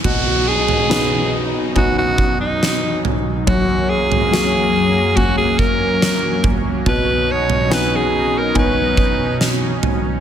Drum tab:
CC |x---------------|----------------|----------------|
SD |----o-------o---|----o-------o---|----o-------o---|
FT |o--o----o-----o-|o--o----o-----o-|o--o----o-----o-|
BD |o-------o-o-----|o-------o-o---o-|o-------o-o-----|